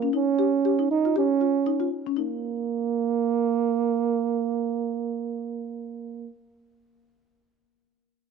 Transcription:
0.02 0.10 C#4 medium
0.13 0.87 C#4 loud
0.13 0.21 D#4 medium
0.39 0.47 G4 medium
0.65 0.73 G4 medium
0.79 0.87 D#4 medium
0.91 1.14 D#4 loud
1.05 1.13 F4 medium
1.16 1.89 C#4 loud
1.16 1.24 G4 medium
1.41 1.49 F4 medium
1.66 1.74 D#4 medium
1.80 1.88 F4 medium
2.07 2.15 C#4 medium
2.17 6.28 A#3 medium
2.17 2.25 D#4 medium

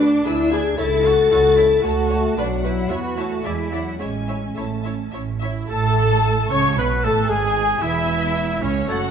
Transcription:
0.00 0.20 D2 medium
0.00 0.22 D4 medium
0.00 0.79 D4 medium
0.00 0.08 F#4 medium
0.00 0.08 B4 medium
0.00 0.23 D6 medium
0.25 0.72 D2 medium
0.25 0.34 E4 medium
0.25 0.52 E4 medium
0.25 0.34 G#4 medium
0.25 0.33 B4 medium
0.25 0.52 E6 medium
0.52 0.60 E4 medium
0.52 0.60 G#4 medium
0.52 0.79 G#4 medium
0.52 0.61 B4 medium
0.52 0.79 G#6 medium
0.77 1.25 C#2 medium
0.77 0.86 E4 medium
0.77 1.04 E4 medium
0.77 0.86 A4 medium
0.77 1.82 A4 loud
0.77 0.85 C#5 medium
0.77 1.83 A6 loud
1.03 1.12 E4 medium
1.03 1.29 F#4 medium
1.03 1.11 A4 medium
1.03 1.12 C#5 medium
1.30 1.79 C#2 medium
1.30 1.39 E4 medium
1.30 1.57 F#4 medium
1.30 1.38 A4 medium
1.30 1.40 C#5 medium
1.57 1.84 E4 medium
1.57 1.65 E4 medium
1.57 1.65 A4 medium
1.57 1.66 C#5 medium
1.84 2.31 D2 medium
1.84 2.36 A3 medium
1.84 2.37 F#4 medium
1.84 1.92 F#4 medium
1.84 1.92 A4 medium
1.84 1.92 C#5 medium
1.84 2.36 A5 medium
2.10 2.19 F#4 medium
2.10 2.19 A4 medium
2.10 2.18 C#5 medium
2.37 2.84 B1 medium
2.37 2.90 F#3 medium
2.37 2.63 D4 medium
2.37 2.46 F#4 medium
2.37 2.46 B4 medium
2.37 2.45 D5 medium
2.37 2.91 F#5 medium
2.63 2.90 E4 medium
2.63 2.72 F#4 soft
2.63 2.73 B4 medium
2.63 2.72 D5 soft
2.89 3.38 E2 medium
2.89 3.17 B3 medium
2.89 2.98 E4 soft
2.89 3.44 F#4 medium
2.89 2.98 C#5 soft
2.89 2.97 E5 soft
2.89 3.18 B5 medium
3.17 3.45 A3 medium
3.17 3.26 E4 soft
3.17 3.26 C#5 soft
3.17 3.25 E5 soft
3.17 3.46 A5 medium
3.43 3.94 E2 medium
3.43 3.73 G#3 medium
3.43 4.01 E4 medium
3.43 3.53 E4 soft
3.43 3.53 D5 soft
3.43 3.51 E5 soft
3.43 3.73 G#5 medium
3.73 4.00 F#3 medium
3.73 3.81 E4 soft
3.73 3.81 D5 soft
3.73 3.81 E5 soft
3.73 4.00 F#5 medium
3.99 4.50 A1 medium
3.99 4.55 G#3 medium
3.99 5.39 C#4 soft
3.99 4.09 E4 soft
3.99 4.08 C#5 soft
3.99 4.08 E5 soft
3.99 4.56 G#5 medium
4.28 4.37 E4 soft
4.28 4.37 C#5 soft
4.28 4.36 E5 soft
4.55 5.06 A1 medium
4.55 5.12 A3 medium
4.55 4.65 E4 soft
4.55 4.65 C#5 soft
4.55 4.64 E5 soft
4.55 5.12 A5 soft
4.84 4.93 E4 soft
4.84 4.94 C#5 soft
4.84 4.92 E5 soft
5.12 5.64 A1 medium
5.12 5.21 E4 soft
5.12 5.22 C#5 soft
5.12 5.20 E5 soft
5.41 5.70 E4 medium
5.41 5.51 C#5 soft
5.41 5.49 E5 medium
5.70 6.48 A1 medium
5.70 6.48 A2 medium
5.70 6.47 A3 medium
5.70 6.53 A4 medium
5.70 6.47 A4 medium
5.70 6.48 A4 medium
5.70 6.52 A4 medium
5.70 6.48 A5 medium
5.70 6.50 A5 medium
6.50 6.78 C#2 medium
6.50 6.78 C#3 medium
6.50 6.77 C#4 medium
6.50 6.80 C#5 medium
6.50 6.78 C#5 medium
6.50 6.77 C#6 medium
6.77 7.04 B1 medium
6.77 7.04 B2 medium
6.77 7.04 B3 medium
6.77 7.04 B4 medium
6.77 6.87 B4 medium
6.77 7.06 B4 medium
6.77 6.84 B5 medium
6.77 6.87 B5 medium
7.04 7.31 A1 medium
7.04 7.30 A2 medium
7.04 7.31 A3 medium
7.04 7.29 A4 medium
7.04 7.31 A4 medium
7.04 7.30 A4 medium
7.04 7.30 A5 medium
7.29 7.82 G#1 medium
7.29 7.82 G#2 medium
7.29 7.82 G#3 medium
7.29 7.84 G#4 medium
7.29 7.81 G#4 medium
7.29 7.83 G#4 medium
7.29 7.81 G#5 medium
7.29 7.82 G#5 medium
7.82 8.60 E1 medium
7.82 8.60 E2 medium
7.82 8.60 E3 medium
7.82 8.63 E4 medium
7.82 8.62 E4 medium
7.82 8.61 E4 medium
7.82 8.63 E4 medium
7.82 8.60 E5 medium
7.82 8.64 E5 medium
8.61 8.89 C#2 medium
8.61 8.89 C#3 medium
8.61 8.88 C#4 medium
8.61 8.89 C#4 medium
8.61 8.89 C#5 medium
8.87 9.11 F#1 medium
8.87 9.11 F#2 medium
8.87 9.06 A3 medium
8.87 9.11 A3 medium
8.87 9.06 C#4 medium
8.87 9.11 F#4 medium
8.87 9.11 A4 medium
8.87 9.00 A4 medium
8.87 9.01 C#5 medium
8.87 9.11 F#5 medium
8.87 8.96 A6 medium

